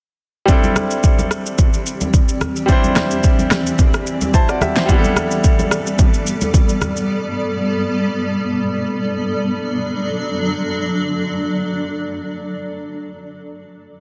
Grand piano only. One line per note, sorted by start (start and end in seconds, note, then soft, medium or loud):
0.45 2.63 G3 medium
0.45 2.64 C4 medium
0.45 2.65 D4 medium
0.50 2.65 E4 medium
0.50 2.66 A4 medium
2.66 4.83 G3 medium
2.66 4.84 C4 medium
2.66 4.85 D4 medium
2.70 4.04 E4 medium
2.70 4.05 C5 medium
4.34 4.49 E4 medium
4.34 4.48 C5 medium
4.34 4.85 A5 medium
4.49 4.61 F#4 medium
4.49 4.61 D5 medium
4.61 4.76 G4 medium
4.61 4.76 E5 medium
4.77 4.89 E4 medium
4.77 5.03 C5 medium
4.86 7.03 G3 medium
4.86 7.04 B3 medium
4.86 7.05 D4 medium
4.90 7.06 E4 medium
4.90 4.98 G4 medium
4.98 7.10 A4 medium